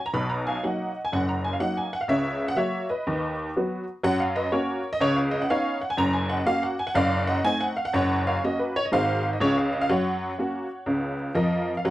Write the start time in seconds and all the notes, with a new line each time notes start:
0.06 A#5
0.13 B1 B2 B5
0.29 A#5
0.47 F5 G#5
0.63 F#3 A#3 D#4 D#5 F#5
1.05 G#5
1.12 F#1 F#2 F#5
1.29 A#5
1.44 G#5
1.53 F5
1.60 F#3 A#3 D#4 F#5
1.77 G#5
1.93 F#5
2.01 F5
2.08 C#2 C#3 C#5 E5
2.48 F#5
2.56 F#3 A#3 F#4 C#5 E5
2.89 B4 D#5
3.07 D#2 D#3
3.57 F#3 B3 F#4
4.03 F#2 F#3 F#5
4.20 F5
4.36 B4 D#5
4.52 A#3 C#4 F#4 A#4 C#5
4.93 D#5
5.00 C#2 C#3 C#5
5.16 F5
5.31 D#5
5.42 F#5
5.49 B3 C#4 D#4 C#5 F5
5.81 F#5
5.90 G#5
5.97 F#1 F#2 A#5
6.13 G#5
6.29 D#5 F#5
6.46 A#3 C#4 F#4 F5
6.63 F#5
6.79 G#5
6.87 F#5
6.94 F#1 F#2 D5 F5
7.27 D#5 F#5
7.44 A3 C4 D#4 G#5
7.61 F#5
7.77 F5
7.85 F#5
7.93 F#1 F#2 C#5 F#5
8.27 C#5 F5
8.44 A#3 C#4 F#4 D#5
8.59 B4
8.76 C#5
8.85 D#5
8.92 G#1 G#2 G#3 C4 F#4 C5 F5
9.33 D#5
9.40 C#2 C#3 G#3 C#4 F4 C#5
9.57 F5
9.73 D#5
9.81 F5
9.89 F#2 F#3 C#5 F#5
10.39 A#3 C#4 F#4
10.86 C#2 C#3
11.35 F2 F3 A#4 D#5
11.77 F5
11.85 F#2 F#3 F#5